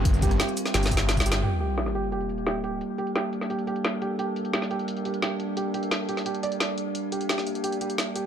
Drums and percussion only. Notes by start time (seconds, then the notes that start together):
0.05 kick, closed hi-hat
0.14 shaker
0.22 kick, closed hi-hat, shaker
0.31 cross-stick, closed hi-hat
0.40 snare, closed hi-hat
0.48 shaker
0.57 closed hi-hat, shaker
0.66 cross-stick, snare, closed hi-hat
0.74 snare, closed hi-hat
0.83 snare, closed hi-hat, shaker
0.91 kick, closed hi-hat, shaker
0.97 snare, closed hi-hat
1.09 snare, closed hi-hat
1.17 kick, snare, shaker
1.26 closed hi-hat, shaker
1.32 snare
1.43 closed hi-hat
1.60 closed hi-hat
1.69 closed hi-hat
1.78 snare, closed hi-hat
1.86 snare
1.95 closed hi-hat
2.04 closed hi-hat
2.12 closed hi-hat
2.21 closed hi-hat
2.29 closed hi-hat
2.38 closed hi-hat
2.47 snare, closed hi-hat
2.64 closed hi-hat
2.81 closed hi-hat
2.98 closed hi-hat
3.07 closed hi-hat
3.16 snare, closed hi-hat
3.33 closed hi-hat
3.41 snare, closed hi-hat
3.50 closed hi-hat
3.59 closed hi-hat
3.67 closed hi-hat
3.76 closed hi-hat
3.85 snare, closed hi-hat
4.02 closed hi-hat
4.19 closed hi-hat
4.36 closed hi-hat
4.45 closed hi-hat
4.53 snare, closed hi-hat
4.62 snare
4.71 closed hi-hat
4.79 closed hi-hat
4.88 closed hi-hat
4.97 closed hi-hat
5.05 closed hi-hat
5.14 closed hi-hat
5.22 snare, closed hi-hat
5.40 closed hi-hat
5.57 closed hi-hat
5.74 closed hi-hat
5.83 closed hi-hat
5.91 snare, closed hi-hat
6.09 closed hi-hat
6.17 snare, closed hi-hat
6.26 closed hi-hat
6.35 closed hi-hat
6.43 closed hi-hat
6.52 closed hi-hat
6.60 snare, closed hi-hat
6.78 closed hi-hat
6.95 closed hi-hat
7.12 closed hi-hat
7.21 closed hi-hat
7.29 snare, closed hi-hat
7.38 snare
7.47 closed hi-hat
7.55 closed hi-hat
7.64 closed hi-hat
7.72 closed hi-hat
7.81 closed hi-hat
7.90 closed hi-hat
7.98 snare, closed hi-hat
8.16 closed hi-hat